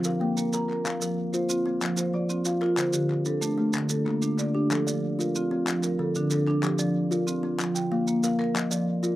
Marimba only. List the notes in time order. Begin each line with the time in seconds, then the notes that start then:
0.04 F5
0.20 G5
0.37 A#3 A#4
0.54 A#5
0.68 A#4
0.84 F5
1.00 F3
1.33 C5
1.49 C4 F4
1.82 F3
1.98 C5
2.14 D5
2.30 C4 F4
2.46 F5
2.62 F4
2.78 C5
2.94 D3
3.26 A4
3.41 A3 D4
3.73 D3
3.90 A4
4.05 A#3
4.22 A3 D4
4.39 D5
4.55 D4
4.71 A4
4.87 F3
5.19 A#4
5.36 C4 F4
5.68 F3
5.83 A#4
5.99 A4
6.16 D3 D4
6.31 A4
6.47 D4
6.63 G4
6.79 F3
7.11 A#4
7.27 C4 F4
7.59 F3
7.75 G5
7.91 F5
8.07 A#3
8.23 F5
8.39 A#4
8.55 D#5
8.71 F3
9.03 A#4